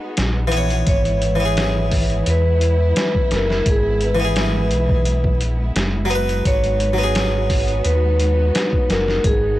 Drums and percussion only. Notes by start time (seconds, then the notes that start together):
0.17 snare, closed hi-hat
0.52 closed hi-hat
0.70 closed hi-hat
0.87 kick, closed hi-hat
1.05 closed hi-hat
1.22 closed hi-hat
1.57 snare, closed hi-hat
1.91 kick, open hi-hat
2.10 closed hi-hat
2.26 closed hi-hat
2.61 closed hi-hat
2.96 snare, closed hi-hat
3.15 kick
3.31 snare, closed hi-hat
3.50 snare
3.66 kick, closed hi-hat
4.01 closed hi-hat
4.36 snare, closed hi-hat
4.71 closed hi-hat
4.89 kick
5.05 closed hi-hat
5.24 kick
5.41 closed hi-hat
5.76 snare, closed hi-hat
6.11 closed hi-hat
6.29 closed hi-hat
6.45 kick, closed hi-hat
6.64 closed hi-hat
6.80 closed hi-hat
7.15 snare, closed hi-hat
7.50 kick, open hi-hat
7.68 closed hi-hat
7.85 closed hi-hat
8.20 closed hi-hat
8.55 snare, closed hi-hat
8.73 kick
8.90 snare, closed hi-hat
9.08 snare
9.24 kick, closed hi-hat